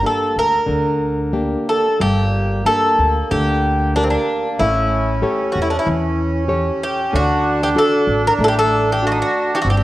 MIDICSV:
0, 0, Header, 1, 5, 480
1, 0, Start_track
1, 0, Key_signature, -2, "minor"
1, 0, Tempo, 653595
1, 1472, Time_signature, 4, 2, 24, 8
1, 2906, Tempo, 632911
1, 7363, End_track
2, 0, Start_track
2, 0, Title_t, "Bouzouki"
2, 0, Program_c, 0, 25
2, 47, Note_on_c, 0, 69, 72
2, 278, Note_off_c, 0, 69, 0
2, 285, Note_on_c, 0, 70, 78
2, 1213, Note_off_c, 0, 70, 0
2, 1241, Note_on_c, 0, 69, 72
2, 1460, Note_off_c, 0, 69, 0
2, 1478, Note_on_c, 0, 67, 82
2, 1952, Note_off_c, 0, 67, 0
2, 1955, Note_on_c, 0, 69, 82
2, 2429, Note_off_c, 0, 69, 0
2, 2432, Note_on_c, 0, 67, 78
2, 2903, Note_off_c, 0, 67, 0
2, 2906, Note_on_c, 0, 62, 69
2, 2961, Note_off_c, 0, 62, 0
2, 2965, Note_on_c, 0, 60, 55
2, 3013, Note_off_c, 0, 60, 0
2, 3016, Note_on_c, 0, 62, 62
2, 3389, Note_on_c, 0, 64, 70
2, 3405, Note_off_c, 0, 62, 0
2, 4050, Note_off_c, 0, 64, 0
2, 4091, Note_on_c, 0, 66, 58
2, 4155, Note_off_c, 0, 66, 0
2, 4165, Note_on_c, 0, 64, 60
2, 4225, Note_off_c, 0, 64, 0
2, 4230, Note_on_c, 0, 62, 60
2, 4292, Note_off_c, 0, 62, 0
2, 4296, Note_on_c, 0, 64, 60
2, 4359, Note_off_c, 0, 64, 0
2, 5088, Note_on_c, 0, 67, 71
2, 5328, Note_off_c, 0, 67, 0
2, 5331, Note_on_c, 0, 66, 81
2, 5692, Note_off_c, 0, 66, 0
2, 5695, Note_on_c, 0, 67, 80
2, 5733, Note_off_c, 0, 67, 0
2, 5810, Note_on_c, 0, 69, 83
2, 6134, Note_off_c, 0, 69, 0
2, 6178, Note_on_c, 0, 70, 89
2, 6216, Note_off_c, 0, 70, 0
2, 6306, Note_on_c, 0, 69, 88
2, 6334, Note_off_c, 0, 69, 0
2, 6337, Note_on_c, 0, 67, 74
2, 6381, Note_off_c, 0, 67, 0
2, 6417, Note_on_c, 0, 69, 86
2, 6657, Note_off_c, 0, 69, 0
2, 6672, Note_on_c, 0, 67, 76
2, 6762, Note_off_c, 0, 67, 0
2, 6781, Note_on_c, 0, 66, 69
2, 6813, Note_off_c, 0, 66, 0
2, 6819, Note_on_c, 0, 63, 56
2, 6860, Note_off_c, 0, 63, 0
2, 6895, Note_on_c, 0, 66, 72
2, 7111, Note_off_c, 0, 66, 0
2, 7146, Note_on_c, 0, 66, 69
2, 7152, Note_on_c, 0, 67, 61
2, 7160, Note_off_c, 0, 66, 0
2, 7173, Note_off_c, 0, 67, 0
2, 7198, Note_on_c, 0, 66, 69
2, 7239, Note_off_c, 0, 66, 0
2, 7262, Note_on_c, 0, 67, 68
2, 7297, Note_off_c, 0, 67, 0
2, 7316, Note_on_c, 0, 67, 51
2, 7353, Note_off_c, 0, 67, 0
2, 7363, End_track
3, 0, Start_track
3, 0, Title_t, "Nylon-string guitar"
3, 0, Program_c, 1, 24
3, 21, Note_on_c, 1, 62, 41
3, 25, Note_on_c, 1, 67, 38
3, 32, Note_on_c, 1, 58, 45
3, 401, Note_off_c, 1, 62, 0
3, 403, Note_off_c, 1, 67, 0
3, 407, Note_off_c, 1, 58, 0
3, 488, Note_on_c, 1, 50, 47
3, 965, Note_off_c, 1, 50, 0
3, 977, Note_on_c, 1, 62, 36
3, 977, Note_on_c, 1, 67, 33
3, 980, Note_on_c, 1, 58, 39
3, 1369, Note_off_c, 1, 67, 0
3, 1370, Note_off_c, 1, 62, 0
3, 1371, Note_off_c, 1, 58, 0
3, 1468, Note_on_c, 1, 55, 55
3, 1937, Note_off_c, 1, 55, 0
3, 1948, Note_on_c, 1, 62, 44
3, 1952, Note_on_c, 1, 58, 46
3, 1952, Note_on_c, 1, 67, 41
3, 2335, Note_off_c, 1, 62, 0
3, 2336, Note_off_c, 1, 67, 0
3, 2337, Note_off_c, 1, 58, 0
3, 2432, Note_on_c, 1, 50, 52
3, 2892, Note_off_c, 1, 50, 0
3, 2908, Note_on_c, 1, 62, 42
3, 2912, Note_on_c, 1, 67, 37
3, 2917, Note_on_c, 1, 70, 46
3, 3295, Note_off_c, 1, 62, 0
3, 3297, Note_off_c, 1, 67, 0
3, 3300, Note_off_c, 1, 70, 0
3, 3387, Note_on_c, 1, 57, 57
3, 3856, Note_off_c, 1, 57, 0
3, 3865, Note_on_c, 1, 67, 45
3, 3869, Note_on_c, 1, 69, 42
3, 3873, Note_on_c, 1, 73, 46
3, 4253, Note_off_c, 1, 67, 0
3, 4255, Note_off_c, 1, 69, 0
3, 4258, Note_off_c, 1, 73, 0
3, 4352, Note_on_c, 1, 52, 55
3, 4818, Note_off_c, 1, 52, 0
3, 4820, Note_on_c, 1, 67, 44
3, 4826, Note_on_c, 1, 69, 39
3, 4827, Note_on_c, 1, 73, 46
3, 5209, Note_off_c, 1, 67, 0
3, 5212, Note_off_c, 1, 73, 0
3, 5213, Note_off_c, 1, 69, 0
3, 5314, Note_on_c, 1, 50, 62
3, 5777, Note_off_c, 1, 50, 0
3, 5786, Note_on_c, 1, 62, 48
3, 5790, Note_on_c, 1, 66, 42
3, 5795, Note_on_c, 1, 69, 54
3, 6171, Note_off_c, 1, 62, 0
3, 6173, Note_off_c, 1, 66, 0
3, 6175, Note_off_c, 1, 69, 0
3, 6278, Note_on_c, 1, 57, 58
3, 6737, Note_off_c, 1, 57, 0
3, 6749, Note_on_c, 1, 62, 43
3, 6751, Note_on_c, 1, 66, 40
3, 6753, Note_on_c, 1, 69, 46
3, 7131, Note_off_c, 1, 62, 0
3, 7132, Note_off_c, 1, 66, 0
3, 7133, Note_off_c, 1, 69, 0
3, 7228, Note_on_c, 1, 55, 55
3, 7363, Note_off_c, 1, 55, 0
3, 7363, End_track
4, 0, Start_track
4, 0, Title_t, "Accordion"
4, 0, Program_c, 2, 21
4, 1463, Note_on_c, 2, 58, 80
4, 3379, Note_on_c, 2, 61, 89
4, 3447, Note_off_c, 2, 58, 0
4, 5304, Note_on_c, 2, 62, 105
4, 5364, Note_off_c, 2, 61, 0
4, 7214, Note_on_c, 2, 60, 83
4, 7278, Note_off_c, 2, 62, 0
4, 7363, Note_off_c, 2, 60, 0
4, 7363, End_track
5, 0, Start_track
5, 0, Title_t, "Upright bass"
5, 0, Program_c, 3, 32
5, 265, Note_on_c, 3, 38, 66
5, 418, Note_off_c, 3, 38, 0
5, 500, Note_on_c, 3, 38, 77
5, 1132, Note_off_c, 3, 38, 0
5, 1471, Note_on_c, 3, 31, 83
5, 1941, Note_off_c, 3, 31, 0
5, 2193, Note_on_c, 3, 38, 69
5, 2349, Note_off_c, 3, 38, 0
5, 2436, Note_on_c, 3, 38, 88
5, 3052, Note_off_c, 3, 38, 0
5, 3396, Note_on_c, 3, 33, 85
5, 3864, Note_off_c, 3, 33, 0
5, 4118, Note_on_c, 3, 40, 72
5, 4273, Note_off_c, 3, 40, 0
5, 4355, Note_on_c, 3, 40, 91
5, 4978, Note_off_c, 3, 40, 0
5, 5316, Note_on_c, 3, 38, 84
5, 5780, Note_off_c, 3, 38, 0
5, 6028, Note_on_c, 3, 33, 76
5, 6184, Note_off_c, 3, 33, 0
5, 6264, Note_on_c, 3, 33, 89
5, 6887, Note_off_c, 3, 33, 0
5, 7221, Note_on_c, 3, 31, 86
5, 7363, Note_off_c, 3, 31, 0
5, 7363, End_track
0, 0, End_of_file